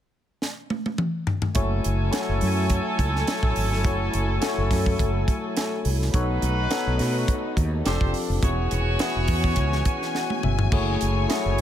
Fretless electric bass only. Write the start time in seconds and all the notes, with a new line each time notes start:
1.56 F#1
1.85 F#1
2.29 F#1
2.42 F#2
2.99 C#2
3.43 A1
3.57 G#1
3.72 G1
3.85 F#1
4.14 F#1
4.58 F#1
4.71 F#2
4.99 F#1
5.85 C2
6.14 B1
6.42 B1
6.87 B1
7.00 B2
7.57 D#2
7.86 F1
8.01 F1
8.29 F1
8.43 E1
8.72 E1
9.16 E1
9.29 E2
9.57 C#2
10.44 G1
10.72 F#1
11.02 F#1
11.45 F#1